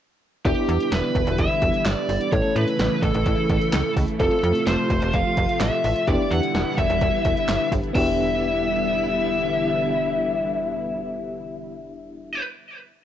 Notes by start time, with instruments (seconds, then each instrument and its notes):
0.45 fm bass E1, string machine D3 G3 B3 E4, fm electric piano B3 D4 E4 G4, lead electric guitar G4, kick, closed hi-hat
0.68 fm bass E2, closed hi-hat
0.80 closed hi-hat
0.92 fm bass E1, lead electric guitar B4, snare, closed hi-hat
1.15 fm bass E1, kick, closed hi-hat
1.27 fm bass E1, closed hi-hat
1.38 fm bass E1, lead electric guitar E5, kick, closed hi-hat
1.62 fm bass E1, kick, closed hi-hat
1.74 closed hi-hat
1.86 fm bass G1, lead electric guitar D5, snare, clap, closed hi-hat
2.09 fm bass G1, open hi-hat
2.21 closed hi-hat
2.32 fm bass A1, string machine C#3 E3 A3 E4, fm electric piano A3 C#4 E4 A4, lead electric guitar C#5, kick, closed hi-hat
2.56 fm bass A2, lead electric guitar B4, closed hi-hat
2.68 closed hi-hat
2.79 fm bass A1, snare, closed hi-hat
3.02 fm bass A1, lead electric guitar A4, kick, closed hi-hat
3.14 fm bass A1, closed hi-hat
3.26 fm bass A1, kick, closed hi-hat
3.50 fm bass A1, kick, closed hi-hat
3.61 closed hi-hat
3.73 fm bass C#2, snare, clap, closed hi-hat
3.96 fm bass C#2, kick, open hi-hat
4.08 closed hi-hat
4.20 fm bass F1, string machine C3 F3 F4, fm electric piano A3 C4 F4 A4, lead electric guitar A4, kick, closed hi-hat
4.43 fm bass F2, closed hi-hat
4.55 closed hi-hat
4.67 fm bass F1, lead electric guitar C5, snare, closed hi-hat
4.90 fm bass F1, kick, closed hi-hat
5.02 fm bass F1, closed hi-hat
5.13 fm bass F1, lead electric guitar F5, kick, closed hi-hat
5.37 fm bass F1, kick, closed hi-hat
5.49 closed hi-hat
5.60 fm bass A1, lead electric guitar E5, snare, clap, closed hi-hat
5.84 fm bass A1, open hi-hat
5.96 closed hi-hat
6.07 fm bass E1, string machine D3 G3 B3 E4, fm electric piano B3 D4 E4 G4, lead electric guitar D5, kick, closed hi-hat
6.30 fm bass E2, lead electric guitar F#5, closed hi-hat
6.43 closed hi-hat
6.54 fm bass E1, snare, closed hi-hat
6.78 fm bass E1, lead electric guitar E5, kick, closed hi-hat
6.90 fm bass E1, closed hi-hat
7.01 fm bass E1, kick, closed hi-hat
7.25 fm bass E1, kick, closed hi-hat
7.37 closed hi-hat
7.48 fm bass G1, snare, clap, closed hi-hat
7.72 fm bass G1, kick, open hi-hat
7.83 closed hi-hat
7.93 fm bass E1, string machine D3 G3 B3 E4, fm electric piano B3 D4 E4, lead electric guitar E5, kick, crash
7.97 fm electric piano G4